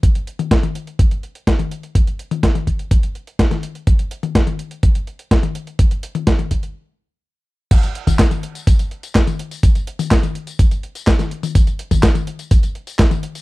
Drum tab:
CC |----------------|----------------|----------------|----------------|
HH |xxxxxxxxxxxxxxxx|xxxxxxxxxxxxxxxx|xxxxxxxxxxxxxxxx|xxxxxxxx--------|
TB |----------------|----------------|----------------|----------------|
CP |----------------|----------------|----------------|----------------|
SD |----o-------o---|----o-------oo--|----o-------o---|----o-----------|
T1 |---o-o-------o--|---o-o-------o--|---o-o-------o--|---o-o----------|
BD |o---o---o---o---|o---o-o-o---o---|o---o---o---o---|o---o-o---------|

CC |x---------------|----------------|----------------|
HH |xxxxxxxxxxxxxxxx|xxxxxxxxxxxxxxxx|xxxxxxxxxxxxxxxx|
TB |xx-xxx-xxx-xxx-x|xx-xxx-xxx-xxx-x|xx-xxx-xxx-xxx-x|
CP |----x-------x---|----x-------x---|----x-------x---|
SD |----o-------o---|----o-------oo--|----o-------o---|
T1 |---o-o-------o--|---o-o-------o-o|---o-o-------o--|
BD |o--oo---o---o---|o---o---o---o---|o--oo---o---o---|